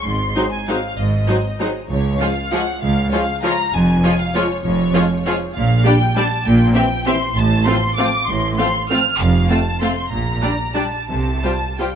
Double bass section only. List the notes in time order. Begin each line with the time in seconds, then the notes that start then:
0.05 G#1
0.98 G#1
1.90 C#2
2.81 C#2
3.74 F1
4.65 F1
5.56 A#1
6.46 A#1
7.35 A1
8.28 A1
9.20 F1
10.12 A#1
11.10 C2